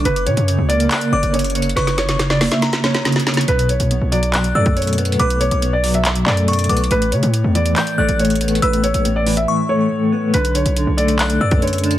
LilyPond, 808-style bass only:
\new Staff \with { instrumentName = "808-style bass" } { \clef bass \time 4/4 \key b \minor \tempo 4 = 140 fis,,8 ais,16 fis,8 cis,8. r8 fis,,16 fis,,4~ fis,,16 | fis,,4.~ fis,,16 r2 r16 | b,,8. b,,8 b,,4~ b,,16 fis,4. | b,,8. b,,4.~ b,,16 fis,4 b,,8 |
a,,8 cis16 a,8 e,8. r8 a,,16 a,,4~ a,,16 | a,,8. a,,4~ a,,16 r2 | b,,8. b,,8 b,,4~ b,,16 fis,4. | }